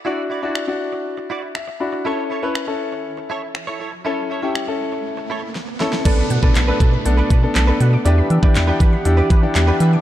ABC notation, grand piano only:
X:1
M:4/4
L:1/16
Q:1/4=120
K:Amix
V:1 name="Grand piano"
[DEF]3 [DEF]2 [DEF]6- [DEF] e2 [DEFb]2 | [CEA]3 [CEB]2 [CEA]6- [CEA] z4 | [CEA]3 [CEG]2 [CEA]6- [CEA] z2 [CEA]2 | [B,DA]3 [B,DA]2 [B,DB]3 [B,DA]3 [B,DA]2 [B,DA]3 |
[DEG]3 [DEG]2 [DEG]3 [DEG]3 [DEG]2 [DEG]3 |]